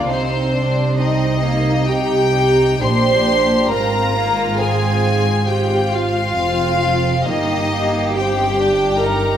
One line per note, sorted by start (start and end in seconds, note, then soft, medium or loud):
0.07 2.77 C2 medium
0.07 2.78 C3 medium
0.07 0.97 C4 medium
0.07 0.53 D#4 medium
0.07 0.96 C5 medium
0.53 0.96 D4 medium
0.98 1.43 C4 medium
0.98 1.85 D#4 medium
0.98 1.84 D#5 medium
1.41 1.86 A#3 medium
1.86 2.32 D#4 medium
1.86 2.81 G4 medium
1.86 2.82 G5 medium
2.34 2.80 D#4 medium
2.80 3.68 A#1 medium
2.80 3.69 A#2 medium
2.80 3.71 D4 medium
2.80 3.69 G4 medium
2.80 3.70 C5 medium
2.80 3.71 C6 medium
3.70 6.35 G#1 medium
3.70 6.36 G#2 medium
3.70 4.15 C4 medium
3.70 5.47 F4 medium
3.70 4.57 A#4 medium
3.70 4.57 A#5 medium
4.15 4.59 A#3 medium
4.60 5.47 C4 medium
4.60 5.47 G#4 medium
4.60 5.48 G#5 medium
5.47 6.34 C4 medium
5.47 7.21 F4 medium
5.47 5.91 G4 medium
5.47 5.91 G5 medium
5.92 7.26 F4 medium
5.92 7.25 F5 medium
6.35 7.23 F1 medium
6.35 7.24 F2 medium
6.35 7.23 C4 medium
7.24 9.37 G1 medium
7.24 9.37 G2 medium
7.24 7.70 A#3 medium
7.24 8.14 D#4 medium
7.24 9.37 G4 medium
7.24 8.13 D#5 medium
7.72 8.14 A#3 medium
8.15 8.58 C4 medium
8.15 9.00 G4 medium
8.15 8.99 G5 medium
8.61 9.02 D4 medium
9.01 9.37 D#4 medium
9.01 9.37 A#4 medium
9.01 9.37 A#5 medium